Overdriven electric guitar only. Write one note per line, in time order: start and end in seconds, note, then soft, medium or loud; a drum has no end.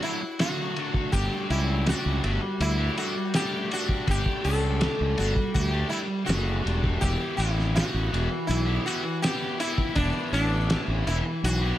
0.02 0.21 F#3 medium
0.02 0.22 A3 medium
0.02 0.21 D4 medium
0.02 0.20 F#4 medium
0.21 muted overdriven electric guitar stroke soft
0.39 1.10 D3 medium
0.39 0.75 F#3 medium
0.39 0.77 A3 medium
0.39 0.78 D4 medium
0.39 0.78 F#4 medium
0.76 1.10 F#3 medium
0.76 0.97 A3 medium
0.76 0.96 D4 medium
0.76 0.94 F#4 medium
0.95 1.13 A3 medium
0.95 1.14 D4 medium
0.95 1.11 F#4 medium
1.12 1.49 G3 medium
1.12 1.50 A3 medium
1.12 1.50 D4 loud
1.12 1.51 G4 medium
1.49 1.85 G3 medium
1.49 1.86 A3 medium
1.49 1.88 D4 medium
1.49 1.88 G4 medium
1.86 2.22 G3 medium
1.86 2.23 A3 medium
1.86 2.25 D4 loud
1.86 2.25 G4 loud
2.23 2.83 G3 medium
2.23 2.41 A3 medium
2.23 2.41 D4 medium
2.23 2.41 G4 medium
2.42 muted overdriven electric guitar stroke medium
2.77 2.96 A3 medium
2.77 2.96 D4 medium
2.77 2.99 G4 medium
2.96 3.34 G3 medium
2.96 3.16 A3 medium
2.96 3.15 D4 medium
2.96 3.16 G4 medium
3.16 muted overdriven electric guitar stroke soft
3.34 3.70 G3 medium
3.34 3.71 A3 medium
3.34 3.71 D4 medium
3.34 3.74 G4 medium
3.70 4.05 G3 medium
3.70 3.90 A3 medium
3.70 3.88 D4 medium
3.70 3.88 G4 medium
3.88 4.05 A3 medium
3.88 4.06 D4 medium
3.88 4.08 G4 medium
4.06 4.41 G3 medium
4.06 4.41 A3 medium
4.06 4.43 D4 medium
4.06 4.44 G4 loud
4.42 4.80 G3 medium
4.42 4.80 A3 medium
4.42 4.81 D4 medium
4.42 4.83 G4 medium
4.80 5.16 G3 medium
4.80 5.16 A3 medium
4.80 5.17 D4 medium
4.80 5.19 G4 medium
5.16 5.77 G3 medium
5.16 5.35 A3 medium
5.16 5.34 D4 medium
5.16 5.35 G4 medium
5.35 muted overdriven electric guitar stroke soft
5.71 5.89 A3 medium
5.71 5.90 D4 medium
5.71 5.92 G4 medium
5.89 6.24 G3 medium
5.89 6.08 A3 medium
5.89 6.07 D4 medium
5.89 6.08 G4 medium
6.08 muted overdriven electric guitar stroke soft
6.25 6.63 G3 medium
6.25 6.63 A3 medium
6.25 6.64 D4 medium
6.25 6.65 G4 medium
6.63 7.01 G3 medium
6.63 6.85 A3 medium
6.63 6.83 D4 medium
6.63 6.82 G4 medium
6.83 7.01 A3 medium
6.83 7.00 D4 medium
6.83 7.04 G4 medium
7.01 7.37 E3 medium
7.01 7.38 B3 medium
7.01 7.39 E4 medium
7.01 7.40 G4 loud
7.38 7.75 E3 medium
7.38 7.76 B3 medium
7.38 7.77 E4 medium
7.38 7.78 G4 medium
7.75 8.11 E3 medium
7.75 8.11 B3 medium
7.75 8.13 E4 medium
7.75 8.13 G4 medium
8.11 8.85 E3 medium
8.11 8.30 B3 medium
8.11 8.31 E4 medium
8.11 8.30 G4 medium
8.31 muted overdriven electric guitar stroke soft
8.66 8.85 B3 medium
8.66 8.87 E4 medium
8.66 8.86 G4 medium
8.85 9.22 E3 medium
8.85 9.04 B3 medium
8.85 9.05 E4 medium
8.85 9.03 G4 medium
9.04 muted overdriven electric guitar stroke medium
9.23 9.57 E3 medium
9.23 9.57 B3 medium
9.23 9.59 E4 medium
9.23 9.59 G4 medium
9.57 9.93 E3 medium
9.57 9.78 B3 medium
9.57 9.78 E4 medium
9.57 9.75 G4 medium
9.76 9.94 B3 medium
9.76 9.95 E4 medium
9.76 9.96 G4 medium
9.94 10.32 E3 medium
9.94 10.32 B3 medium
9.94 10.33 E4 medium
9.94 10.33 G4 medium
10.32 10.68 E3 medium
10.32 10.69 B3 medium
10.32 10.70 E4 medium
10.32 10.71 G4 medium
10.69 11.04 E3 medium
10.69 11.05 B3 medium
10.69 11.06 E4 medium
10.69 11.06 G4 medium
11.04 11.78 E3 medium
11.04 11.25 B3 medium
11.04 11.25 E4 medium
11.04 11.24 G4 medium
11.25 muted overdriven electric guitar stroke soft
11.62 11.78 B3 medium
11.62 11.78 E4 medium
11.62 11.78 G4 medium